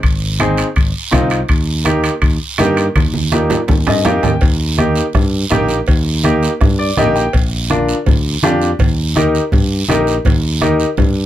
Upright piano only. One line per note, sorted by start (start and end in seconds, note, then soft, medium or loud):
0.40 0.66 C4 medium
0.40 0.66 D#4 medium
0.40 0.66 G#4 medium
1.11 1.38 C4 medium
1.11 1.38 D#4 medium
1.11 1.38 F4 medium
1.84 2.11 A#3 medium
1.84 2.11 D#4 medium
1.84 2.11 G4 medium
2.58 2.84 A#3 medium
2.58 2.84 D#4 medium
2.58 2.85 G4 medium
3.33 3.58 A#3 medium
3.33 3.58 D#4 medium
3.33 3.58 G4 medium
3.88 4.04 D#5 medium
4.05 4.31 A#3 medium
4.05 4.31 D#4 medium
4.05 4.31 G4 medium
4.05 4.22 F5 medium
4.24 4.41 G5 medium
4.78 5.04 A#3 medium
4.78 5.04 D#4 medium
4.78 5.04 G4 medium
5.50 5.76 A#3 medium
5.50 5.76 D#4 medium
5.50 5.77 G4 medium
6.24 6.50 A#3 medium
6.24 6.50 D#4 medium
6.24 6.50 G4 medium
6.79 6.96 D5 medium
6.98 7.23 A#3 medium
6.98 7.23 D#4 medium
6.98 7.23 G4 loud
6.98 7.15 D#5 medium
7.16 7.32 G5 medium
7.70 7.96 D4 medium
7.70 7.96 F4 medium
7.70 7.96 A#4 medium
8.43 8.69 D4 medium
8.43 8.69 F4 medium
8.43 8.69 G4 medium
9.16 9.41 D#4 medium
9.16 9.42 G4 medium
9.16 9.42 A#4 medium
9.89 10.14 D#4 medium
9.89 10.15 G4 medium
9.89 10.15 A#4 medium
10.61 10.87 D#4 medium
10.61 10.87 G4 medium
10.61 10.87 A#4 medium